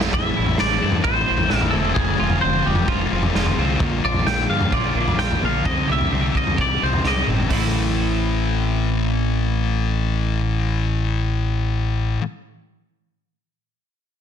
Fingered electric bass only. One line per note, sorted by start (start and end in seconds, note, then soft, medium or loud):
0.00 0.11 A1 medium
0.12 0.31 A1 medium
0.38 0.55 A1 medium
0.61 0.78 A1 medium
0.83 1.01 G2 medium
1.05 1.23 A1 medium
1.30 1.47 A1 medium
1.52 1.70 A1 medium
1.74 1.92 E1 medium
1.97 2.15 F1 medium
2.20 2.38 F1 medium
2.44 2.62 F1 medium
2.67 2.84 F1 medium
3.12 3.30 F1 medium
3.35 3.53 F1 medium
3.58 3.76 C2 medium
3.81 3.99 A#1 medium
4.04 4.23 A#1 medium
4.26 4.45 A#1 medium
4.50 4.69 G2 medium
4.73 4.91 A#1 medium
4.95 5.14 A#1 medium
5.17 5.37 A#1 medium
5.43 5.61 A#1 medium
5.66 5.84 C2 medium
5.89 6.07 C2 medium
6.12 6.30 C2 medium
6.35 6.53 C2 medium
6.59 6.77 C2 medium
6.83 7.00 C2 medium
7.04 7.22 C2 medium
7.28 7.46 G1 medium
7.51 12.16 A1 medium